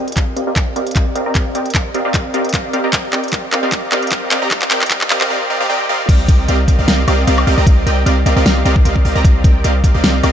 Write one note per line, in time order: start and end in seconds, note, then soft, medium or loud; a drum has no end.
0.00 0.15 C4 medium
0.00 0.15 G4 medium
0.00 0.14 A#4 medium
0.00 0.15 D5 medium
0.00 0.15 D#5 medium
0.00 0.14 G5 medium
0.08 closed hi-hat soft
0.12 closed hi-hat medium
0.17 0.26 C4 medium
0.17 0.26 G4 medium
0.17 0.26 A#4 medium
0.17 0.26 D5 medium
0.17 0.26 D#5 medium
0.17 0.26 F5 medium
0.17 kick medium
0.17 clap soft
0.17 closed hi-hat medium
0.36 0.45 C4 medium
0.36 0.45 G4 medium
0.36 0.45 A#4 medium
0.36 0.45 D5 medium
0.36 0.45 D#5 medium
0.36 0.44 F5 medium
0.36 closed hi-hat medium
0.47 0.55 C4 medium
0.47 0.55 G4 medium
0.47 0.55 A#4 medium
0.47 0.55 D5 medium
0.47 0.55 D#5 medium
0.47 0.55 F5 medium
0.56 0.74 C4 medium
0.56 0.74 G4 medium
0.56 0.74 A#4 medium
0.56 0.74 D5 medium
0.56 0.74 D#5 medium
0.56 0.74 F5 medium
0.56 kick medium
0.56 clap medium
0.56 closed hi-hat medium
0.76 0.94 C4 medium
0.76 0.94 G4 medium
0.76 0.94 A#4 medium
0.76 0.94 D5 medium
0.76 0.94 D#5 medium
0.76 0.94 F5 loud
0.76 closed hi-hat medium
0.87 closed hi-hat soft
0.91 closed hi-hat medium
0.96 1.13 C4 medium
0.96 1.13 G4 medium
0.96 1.13 A#4 medium
0.96 1.13 D5 medium
0.96 1.13 D#5 medium
0.96 1.13 F5 loud
0.96 kick medium
0.96 clap medium
0.96 closed hi-hat medium
1.15 1.24 C4 medium
1.15 1.25 G4 medium
1.15 1.24 A#4 medium
1.15 1.24 D5 medium
1.15 1.24 D#5 medium
1.15 1.24 F5 medium
1.15 closed hi-hat medium
1.26 1.33 C4 medium
1.26 1.33 G4 medium
1.26 1.33 A#4 medium
1.26 1.33 D5 medium
1.26 1.33 D#5 medium
1.26 1.33 A#5 medium
1.35 1.53 C4 medium
1.35 1.53 G4 medium
1.35 1.53 A#4 medium
1.35 1.53 D#5 medium
1.35 1.53 F5 medium
1.35 kick medium
1.35 clap medium
1.35 closed hi-hat medium
1.55 1.73 C4 medium
1.55 1.73 G4 medium
1.55 1.73 A#4 medium
1.55 1.73 D5 medium
1.55 1.73 D#5 medium
1.55 1.73 G5 medium
1.55 closed hi-hat medium
1.66 closed hi-hat soft
1.70 closed hi-hat medium
1.74 1.84 C4 medium
1.74 1.84 G4 medium
1.74 1.84 A#4 medium
1.74 1.84 D5 medium
1.74 1.84 D#5 medium
1.74 1.84 F5 medium
1.74 kick medium
1.74 clap medium
1.74 closed hi-hat medium
1.94 2.02 C4 medium
1.94 2.02 G4 medium
1.94 2.02 A#4 medium
1.94 2.02 D5 medium
1.94 2.02 D#5 medium
1.94 2.02 F5 medium
1.94 closed hi-hat medium
2.05 2.13 C4 medium
2.05 2.13 G4 medium
2.05 2.13 A#4 medium
2.05 2.13 D5 medium
2.05 2.13 D#5 medium
2.05 2.13 F5 loud
2.14 2.32 C4 medium
2.14 2.32 G4 medium
2.14 2.32 A#4 medium
2.14 2.32 D#5 medium
2.14 kick loud
2.14 clap medium
2.14 closed hi-hat medium
2.34 2.51 C4 medium
2.34 2.51 G4 medium
2.34 2.51 A#4 medium
2.34 2.51 D5 medium
2.34 2.52 D#5 medium
2.34 2.51 F5 loud
2.34 closed hi-hat medium
2.45 closed hi-hat soft
2.49 closed hi-hat medium
2.53 2.71 C4 loud
2.53 2.71 G4 medium
2.53 2.71 A#4 medium
2.53 2.71 D5 medium
2.53 2.71 D#5 medium
2.53 2.71 F5 loud
2.53 kick medium
2.53 clap medium
2.53 closed hi-hat medium
2.73 2.82 C4 medium
2.73 2.82 G4 medium
2.73 2.82 A#4 medium
2.73 2.82 D5 medium
2.73 2.82 D#5 medium
2.73 2.82 F5 medium
2.73 closed hi-hat medium
2.84 2.91 C4 medium
2.84 2.91 G4 medium
2.84 2.91 A#4 medium
2.84 2.91 D5 medium
2.84 2.91 D#5 medium
2.84 2.91 A#5 medium
2.93 3.11 C4 medium
2.93 3.11 G4 medium
2.93 kick medium
2.93 clap medium
2.93 closed hi-hat medium
3.13 3.30 C4 medium
3.13 3.30 G4 medium
3.13 3.30 A#4 medium
3.13 3.30 D5 medium
3.13 3.30 D#5 medium
3.13 3.30 G5 medium
3.13 clap medium
3.13 closed hi-hat medium
3.24 closed hi-hat soft
3.28 closed hi-hat medium
3.32 3.42 C4 medium
3.32 3.42 G4 medium
3.32 3.42 A#4 medium
3.32 3.42 D5 medium
3.32 3.42 D#5 medium
3.32 3.42 F5 medium
3.32 kick medium
3.32 clap medium
3.32 closed hi-hat medium
3.52 3.60 C4 medium
3.52 3.60 G4 medium
3.52 3.60 A#4 medium
3.52 3.60 D5 medium
3.52 3.60 D#5 medium
3.52 3.60 F5 medium
3.52 clap medium
3.52 closed hi-hat medium
3.63 3.71 C4 medium
3.63 3.71 G4 medium
3.63 3.71 A#4 medium
3.63 3.71 D5 medium
3.63 3.71 D#5 medium
3.63 3.71 F5 loud
3.72 3.90 G4 medium
3.72 3.90 D5 medium
3.72 kick loud
3.72 clap medium
3.72 closed hi-hat medium
3.92 4.09 C4 loud
3.92 4.09 G4 medium
3.92 4.09 A#4 medium
3.92 4.09 D5 medium
3.92 4.09 D#5 medium
3.92 4.09 F5 loud
3.92 clap medium
3.92 closed hi-hat medium
4.02 closed hi-hat soft
4.07 closed hi-hat medium
4.11 4.29 C4 loud
4.11 4.29 G4 medium
4.11 4.29 A#4 medium
4.11 4.29 D5 medium
4.11 4.29 D#5 medium
4.11 4.29 F5 loud
4.11 kick loud
4.11 clap medium
4.11 closed hi-hat medium
4.31 4.40 C4 medium
4.31 4.40 G4 medium
4.31 4.40 A#4 medium
4.31 4.40 D5 medium
4.31 4.40 D#5 medium
4.31 4.40 F5 medium
4.31 clap medium
4.31 closed hi-hat medium
4.42 4.49 C4 medium
4.42 4.49 G4 medium
4.42 4.49 A#4 medium
4.42 4.49 D5 medium
4.42 4.49 D#5 medium
4.42 4.49 A#5 loud
4.51 4.69 C4 medium
4.51 4.69 G4 medium
4.51 4.69 D5 medium
4.51 4.69 F5 loud
4.51 kick loud
4.51 clap medium
4.51 closed hi-hat medium
4.62 clap medium
4.71 4.88 C4 medium
4.71 4.88 G4 medium
4.71 4.88 A#4 medium
4.71 4.88 D5 medium
4.71 4.88 D#5 medium
4.71 4.88 G5 medium
4.71 clap medium
4.71 closed hi-hat medium
4.82 clap medium
4.82 closed hi-hat soft
4.86 closed hi-hat medium
4.90 5.00 C4 medium
4.90 5.00 G4 medium
4.90 5.00 A#4 medium
4.90 5.00 D5 medium
4.90 5.00 D#5 medium
4.90 5.00 F5 medium
4.90 kick medium
4.90 clap loud
4.90 closed hi-hat medium
5.01 clap medium
5.10 5.18 C4 medium
5.10 5.18 G4 medium
5.10 5.18 A#4 medium
5.10 5.18 D5 medium
5.10 5.18 D#5 medium
5.10 5.18 F5 medium
5.10 clap loud
5.10 closed hi-hat medium
5.21 5.29 C4 medium
5.21 5.29 G4 medium
5.21 5.29 A#4 medium
5.21 5.29 D5 medium
5.21 5.29 D#5 medium
5.21 5.29 F5 loud
5.21 clap medium
5.30 5.48 C4 medium
5.30 5.48 G4 medium
5.30 5.48 A#4 medium
5.30 5.48 D5 medium
5.30 5.48 D#5 medium
5.30 5.48 F5 loud
5.50 5.58 C4 medium
5.50 5.58 G4 medium
5.50 5.58 A#4 medium
5.50 5.58 D5 medium
5.50 5.58 D#5 medium
5.50 5.58 F5 medium
5.60 5.67 C4 medium
5.60 5.67 G4 medium
5.60 5.67 A#4 medium
5.60 5.67 D5 medium
5.60 5.67 D#5 medium
5.60 5.67 F5 loud
5.70 5.87 C4 loud
5.70 5.87 G4 loud
5.70 5.87 A#4 medium
5.70 5.87 D5 medium
5.70 5.87 D#5 loud
5.70 5.87 G5 loud
5.89 6.07 C4 medium
5.89 6.07 G4 medium
5.89 6.07 A#4 medium
5.89 6.07 D5 medium
5.89 6.07 D#5 medium
5.89 6.07 F5 loud
6.09 6.27 C2 loud
6.09 6.26 C4 medium
6.09 6.26 G4 medium
6.09 6.27 A#4 medium
6.09 6.27 D5 medium
6.09 6.27 D#5 medium
6.09 6.26 F5 loud
6.09 kick loud
6.09 closed hi-hat medium
6.09 crash loud
6.28 6.46 C2 loud
6.28 6.46 C4 medium
6.28 6.46 G4 medium
6.28 6.46 A#4 medium
6.28 6.46 D5 medium
6.28 6.46 D#5 medium
6.28 6.46 G5 medium
6.28 kick loud
6.28 closed hi-hat medium
6.48 6.66 C2 medium
6.48 6.58 C4 medium
6.48 6.58 G4 medium
6.48 6.58 A#4 medium
6.48 6.58 D5 medium
6.48 6.58 D#5 medium
6.48 6.58 F5 medium
6.48 closed hi-hat medium
6.68 6.76 C2 loud
6.68 6.76 C4 medium
6.68 6.76 G4 medium
6.68 6.76 A#4 medium
6.68 6.76 D5 medium
6.68 6.76 D#5 medium
6.68 6.76 F5 medium
6.68 kick medium
6.68 closed hi-hat medium
6.79 6.86 C2 loud
6.79 6.87 C4 medium
6.79 6.87 G4 medium
6.79 6.87 A#4 medium
6.79 6.87 D5 medium
6.79 6.87 D#5 medium
6.79 6.87 F5 loud
6.88 7.06 C2 loud
6.88 7.05 C4 medium
6.88 7.05 G4 medium
6.88 7.05 A#4 medium
6.88 7.05 D5 medium
6.88 7.05 D#5 medium
6.88 7.05 F5 medium
6.88 snare loud
6.88 closed hi-hat medium
7.08 7.25 C2 loud
7.08 7.25 C4 loud
7.08 7.25 G4 medium
7.08 7.25 A#4 medium
7.08 7.25 D5 medium
7.08 7.25 D#5 medium
7.08 7.25 F5 loud
7.08 closed hi-hat medium
7.08 high woodblock medium
7.27 7.45 C2 medium
7.27 7.45 C4 loud
7.27 7.45 G4 medium
7.27 7.45 A#4 medium
7.27 7.45 D5 medium
7.27 7.45 D#5 medium
7.27 7.45 F5 loud
7.27 closed hi-hat medium
7.38 high woodblock medium
7.47 7.55 C2 medium
7.47 7.56 C4 medium
7.47 7.56 G4 medium
7.47 7.56 A#4 medium
7.47 7.56 D5 medium
7.47 7.56 D#5 medium
7.47 7.56 F5 medium
7.47 open hi-hat medium
7.58 7.65 C2 loud
7.58 7.65 C4 medium
7.58 7.65 G4 medium
7.58 7.65 A#4 medium
7.58 7.65 D5 medium
7.58 7.65 D#5 medium
7.58 7.65 A#5 medium
7.67 7.85 C2 loud
7.67 7.84 C4 medium
7.67 7.84 F5 medium
7.67 kick loud
7.67 closed hi-hat medium
7.86 8.04 C2 loud
7.86 8.04 C4 medium
7.86 8.04 G4 medium
7.86 8.04 A#4 medium
7.86 8.04 D5 medium
7.86 8.04 D#5 medium
7.86 8.04 G5 medium
7.86 closed hi-hat medium
8.06 8.24 C2 loud
8.06 8.16 C4 medium
8.06 8.16 G4 medium
8.06 8.16 A#4 medium
8.06 8.16 D5 medium
8.06 8.16 D#5 medium
8.06 8.16 F5 medium
8.06 closed hi-hat medium
8.26 8.34 C2 loud
8.26 8.34 C4 medium
8.26 8.34 G4 medium
8.26 8.34 A#4 medium
8.26 8.34 D5 medium
8.26 8.34 D#5 medium
8.26 8.34 F5 medium
8.26 closed hi-hat medium
8.36 8.44 C2 loud
8.36 8.44 C4 medium
8.36 8.44 G4 medium
8.36 8.44 A#4 medium
8.36 8.44 D5 medium
8.36 8.44 D#5 medium
8.36 8.44 F5 loud
8.46 8.64 C2 loud
8.46 8.63 C4 medium
8.46 8.63 G4 medium
8.46 8.63 A#4 medium
8.46 8.63 D5 medium
8.46 8.63 D#5 medium
8.46 8.63 F5 loud
8.46 snare loud
8.46 closed hi-hat medium
8.65 8.83 C2 loud
8.65 8.83 C4 medium
8.65 8.83 G4 medium
8.65 8.83 A#4 medium
8.65 8.83 D5 medium
8.65 8.83 D#5 medium
8.65 8.83 F5 loud
8.65 closed hi-hat medium
8.76 kick loud
8.85 9.03 C2 medium
8.85 9.03 C4 loud
8.85 9.03 G4 medium
8.85 9.03 A#4 medium
8.85 9.03 D5 medium
8.85 9.03 D#5 medium
8.85 9.03 F5 loud
8.85 closed hi-hat medium
8.96 kick medium
9.05 9.13 C2 loud
9.05 9.14 C4 medium
9.05 9.14 G4 medium
9.05 9.14 A#4 medium
9.05 9.14 D5 medium
9.05 9.14 D#5 medium
9.05 9.14 F5 medium
9.05 open hi-hat medium
9.15 9.23 C2 loud
9.15 9.22 C4 medium
9.15 9.22 G4 medium
9.15 9.22 A#4 medium
9.15 9.22 D5 medium
9.15 9.22 D#5 medium
9.15 9.22 A#5 medium
9.25 9.43 C2 loud
9.25 9.42 G4 medium
9.25 9.42 F5 medium
9.25 kick loud
9.25 closed hi-hat medium
9.44 9.62 C2 loud
9.44 9.62 C4 medium
9.44 9.62 G4 medium
9.44 9.62 A#4 medium
9.44 9.62 D5 medium
9.44 9.62 D#5 medium
9.44 9.62 G5 medium
9.44 kick loud
9.44 closed hi-hat medium
9.64 9.82 C2 loud
9.64 9.74 C4 medium
9.64 9.74 G4 medium
9.64 9.74 A#4 medium
9.64 9.74 D5 medium
9.64 9.74 D#5 medium
9.64 9.74 F5 medium
9.64 closed hi-hat medium
9.84 9.92 C2 loud
9.84 9.92 C4 medium
9.84 9.92 G4 medium
9.84 9.92 A#4 medium
9.84 9.92 D5 medium
9.84 9.92 D#5 medium
9.84 9.92 F5 medium
9.84 kick medium
9.84 closed hi-hat medium
9.94 10.02 C2 loud
9.94 10.02 C4 medium
9.94 10.02 G4 medium
9.94 10.02 A#4 medium
9.94 10.02 D5 medium
9.94 10.02 D#5 medium
9.94 10.02 F5 medium
10.04 10.22 C2 loud
10.04 10.21 C4 medium
10.04 10.21 G4 medium
10.04 10.21 A#4 medium
10.04 10.21 D5 medium
10.04 10.21 D#5 medium
10.04 10.21 F5 medium
10.04 snare loud
10.04 closed hi-hat medium
10.23 10.32 C2 loud
10.23 10.32 C4 medium
10.23 10.32 G4 medium
10.23 10.32 A#4 medium
10.23 10.32 D5 medium
10.23 10.32 D#5 medium
10.23 10.32 F5 loud
10.23 closed hi-hat medium
10.23 high woodblock medium